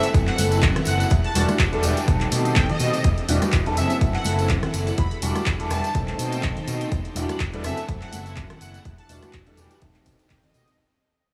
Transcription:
Already playing: E4 A4 F#5
0.03 closed hi-hat, tambourine
0.13 F#2 E3 A3 C4 A4, kick, closed hi-hat, tambourine
0.27 F#5, clap, closed hi-hat
0.38 F#1, open hi-hat, tambourine, high conga
0.52 closed hi-hat, tambourine
0.62 F#2, kick, clap, closed hi-hat, tambourine
0.76 cross-stick, closed hi-hat, low conga
0.85 F#1 F#5, open hi-hat, tambourine
1.00 closed hi-hat, tambourine
1.10 E2 D4 G4, kick, closed hi-hat, tambourine
1.24 A5, closed hi-hat
1.35 E1 E3 G3 D4 F#4, open hi-hat, tambourine, high conga
1.48 muted fingered electric bass stroke, cross-stick, closed hi-hat, tambourine, high conga
1.59 E2, kick, clap, closed hi-hat, tambourine
1.72 E3 G3 D4 A4, closed hi-hat
1.83 E1 E3 G3 D4 G4, open hi-hat, tambourine
1.97 closed hi-hat, tambourine
2.07 B1 D#3 A3 C4 A4 D#5, kick, closed hi-hat, tambourine
2.21 clap, closed hi-hat, high conga
2.32 B2, open hi-hat, tambourine
2.45 closed hi-hat, tambourine
2.56 B1 G5, kick, clap, closed hi-hat
2.69 D#5, closed hi-hat, low conga
2.79 B2, open hi-hat, tambourine
2.94 closed hi-hat, tambourine
3.04 E2 D4 G4 F#5, kick, closed hi-hat
3.18 closed hi-hat
3.28 E1 E3 G3 D4 F#4, open hi-hat, tambourine, high conga
3.42 muted fingered electric bass stroke, cross-stick, closed hi-hat, tambourine, high conga
3.52 E2, kick, clap, closed hi-hat, tambourine
3.66 E3 G3 D4 A4, closed hi-hat
3.77 F#1 E3 A3 C4 E4 A4 E5, open hi-hat, tambourine
3.90 closed hi-hat, tambourine
4.00 F#2 E3 A3 C4 A4, kick, closed hi-hat, tambourine
4.14 F#5, clap, closed hi-hat
4.24 F#1, open hi-hat, tambourine, high conga
4.39 closed hi-hat, tambourine
4.49 F#2, kick, clap, closed hi-hat
4.63 cross-stick, closed hi-hat, low conga
4.74 F#1, open hi-hat, tambourine
4.87 closed hi-hat, tambourine
4.98 E2 D4 G4 B5, kick, closed hi-hat, tambourine
5.11 closed hi-hat
5.22 E1 E3 G3 D4 F#4, open hi-hat, tambourine, high conga
5.35 muted fingered electric bass stroke, cross-stick, closed hi-hat, tambourine, high conga
5.46 E2, kick, clap, closed hi-hat
5.60 E3 G3 D4 A4, closed hi-hat
5.70 E1 E3 G3 D4 G4 A5, cross-stick, open hi-hat, tambourine
5.84 closed hi-hat, tambourine
5.94 B1 D#3 A3 C4 D#4 A4 C5 G5, kick, closed hi-hat, tambourine
6.08 clap, closed hi-hat, high conga
6.19 B2, open hi-hat, tambourine
6.32 closed hi-hat, tambourine
6.43 B1, kick, clap, closed hi-hat
6.57 closed hi-hat, low conga
6.68 B2, open hi-hat, tambourine
6.81 closed hi-hat, tambourine
6.92 E2 D4 G4 F#5, kick, closed hi-hat, tambourine
7.05 closed hi-hat
7.15 E1 E3 G3 D4 F#4, open hi-hat, tambourine, high conga
7.29 muted fingered electric bass stroke, cross-stick, closed hi-hat, tambourine, high conga
7.40 E2, kick, clap, closed hi-hat, tambourine
7.53 E3 G3 D4 A4, closed hi-hat
7.64 F#1 E3 A3 C4 E4 A4 E5, cross-stick, open hi-hat, tambourine
7.77 closed hi-hat, tambourine
7.88 F#2 E3 A3 C4 A4, kick, closed hi-hat, tambourine
8.01 F#5, clap, closed hi-hat
8.13 F#1, open hi-hat, tambourine, high conga
8.26 closed hi-hat, tambourine
8.36 F#2, kick, clap, closed hi-hat, tambourine
8.50 cross-stick, closed hi-hat, low conga
8.61 F#1 F#5, open hi-hat, tambourine
8.74 closed hi-hat, tambourine
8.85 E2 D4 G4, kick, closed hi-hat, tambourine
8.98 A5, closed hi-hat
9.09 E1 E3 G3 D4 F#4, open hi-hat, tambourine, high conga
9.22 muted fingered electric bass stroke, cross-stick, closed hi-hat, tambourine, high conga
9.33 E2, kick, clap, closed hi-hat
9.47 E3 G3 D4 A4, closed hi-hat
9.57 E1 E3 G3 D4 G4, open hi-hat, tambourine
9.71 closed hi-hat, tambourine
9.82 B1 D#3 A3 C4 A4 D#5, kick, closed hi-hat, tambourine
9.94 clap, closed hi-hat, high conga
10.06 B2, kick, open hi-hat, tambourine
10.19 muted fingered electric bass stroke, closed hi-hat, tambourine
10.30 B1 G5, kick, clap, closed hi-hat
10.43 D#5, closed hi-hat, low conga
10.54 B2, open hi-hat, tambourine
10.68 closed hi-hat, tambourine

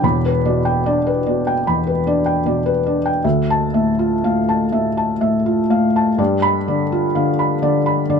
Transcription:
Already playing: D4 G5
0.03 E1 E2 B5
0.25 B4
0.45 B2 D5
0.65 G5
0.86 D4 D5
1.07 B4
1.26 B2 D5
1.47 G5
1.67 E2 B5
1.87 B4
2.07 D4 D5
2.26 G5
2.46 B2 D5
2.66 B4
2.86 D4 D5
3.06 G5
3.24 D2 E5
3.50 A5
3.74 A2 E5
3.99 F4
4.24 A2 F5
4.49 A5
4.72 A2 E5
4.97 A5
5.21 A2 E5
5.46 F4
5.70 A2 F5
5.96 A5
6.18 G2 D5
6.42 B5
6.68 D3 D5
6.92 F4
7.15 D3 F5
7.39 B5
7.62 D3 D5
7.86 B5
8.10 D3 D5

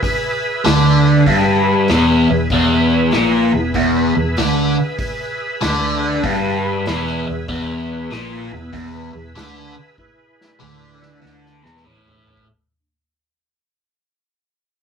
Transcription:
0.02 G#4 B4 E5, kick, open hi-hat
0.64 D2 D3, snare, open hi-hat
1.26 G1 G2, kick, open hi-hat
1.88 E1 E2, snare, open hi-hat
2.30 E1 E2
2.50 E1 E2 A4 C5 F5, kick, open hi-hat
2.74 G#4 B4 E5
3.11 A#1 A#2, snare, open hi-hat
3.52 E1 E2
3.74 E1 E2, kick, open hi-hat
4.15 E1 E2
4.37 D2 D3, snare, open hi-hat
4.98 G#4 B4 E5, kick, open hi-hat
5.61 D2 D3, snare, open hi-hat
6.24 G1 G2, kick, open hi-hat
6.86 E1 E2, snare, open hi-hat
7.07 snare
7.27 E1 E2
7.48 E1 E2 G#4 B4 E5, kick, open hi-hat
8.11 A#1 A#2, snare, open hi-hat
8.51 E1 E2
8.72 E1 E2, kick, open hi-hat
9.13 E1 E2
9.35 D2 D3, snare, open hi-hat
9.98 E4 G#4 B4, kick
10.41 snare
10.60 D2 D3, mid tom
11.03 snare
11.21 D2 D3
11.26 snare
11.46 snare
11.62 E1 E2, snare
11.77 snare
11.84 A1 A2, floor tom
12.08 floor tom
12.27 floor tom
12.37 kick

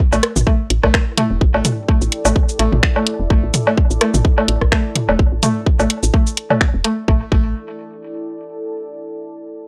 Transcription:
Already playing: E4 A4 D5
0.13 A1 A3, cabasa, low woodblock
0.23 cross-stick, closed hi-hat
0.36 A1, mid tom, cabasa
0.47 A3 G5, kick
0.70 A1, closed hi-hat
0.83 A1 A3, kick, cross-stick, low woodblock
0.94 finger snap, kick, cross-stick
1.18 A3, closed hi-hat, mid tom
1.31 E1
1.41 A1, kick
1.54 A1 A3, low woodblock
1.65 closed hi-hat, mid tom, cabasa
1.88 A3, kick
2.02 A1, cabasa
2.12 closed hi-hat
2.25 A1 A3, cabasa, low woodblock
2.36 kick
2.49 cabasa
2.59 A1 A3, closed hi-hat
2.72 A1, mid tom
2.83 finger snap, kick
2.96 A3, low woodblock
3.07 closed hi-hat
3.20 E1
3.30 A1 A3, kick
3.43 A1
3.54 closed hi-hat, mid tom, cabasa
3.67 A3, low woodblock
3.77 kick
3.90 A1, cabasa
4.01 A3, cross-stick, closed hi-hat
4.12 A1 A5, mid tom, cabasa
4.25 kick
4.38 A3, low woodblock
4.48 A1, closed hi-hat
4.61 A1, kick, cross-stick
4.72 A3, finger snap, kick, cross-stick
4.96 closed hi-hat, mid tom
5.09 E1 A3, low woodblock
5.19 A1, kick
5.32 A1
5.43 A3, closed hi-hat, mid tom, cabasa
5.66 kick
5.79 A1 A3, cabasa, low woodblock
5.90 closed hi-hat
6.03 A1, cabasa
6.14 A3, kick
6.27 cabasa
6.37 closed hi-hat
6.50 A3, mid tom, low woodblock
6.61 finger snap, kick
6.74 E1
6.84 A3, closed hi-hat
7.08 A1 A3 E4, kick
7.16 A4
7.23 D5
7.30 A1 A3 G5, kick

